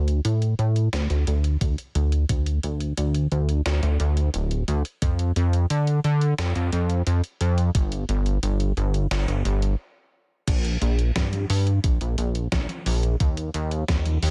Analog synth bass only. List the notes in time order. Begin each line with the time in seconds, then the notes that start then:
Already playing: D2
0.25 A2
0.59 A2
0.93 D2
1.10 D2
1.27 D2
1.61 D2
1.95 D2
2.29 D2
2.63 D2
2.98 D2
3.32 D2
3.66 D2
3.83 D2
4.00 D2
4.34 D1
4.68 D2
5.02 F2
5.36 F2
5.70 D3
6.04 D3
6.38 F2
6.56 F2
6.73 F2
7.07 F2
7.41 F2
7.75 G1
8.09 G1
8.43 G1
8.77 G1
9.11 G1
9.28 G1
9.45 G1
10.48 A#1
10.82 A#1
11.16 G2
11.50 G2
11.84 A#1
12.01 A#1
12.18 A#1
12.52 A#1
12.86 A#1
13.20 D#2
13.54 D#2
13.89 D#2
14.23 D#2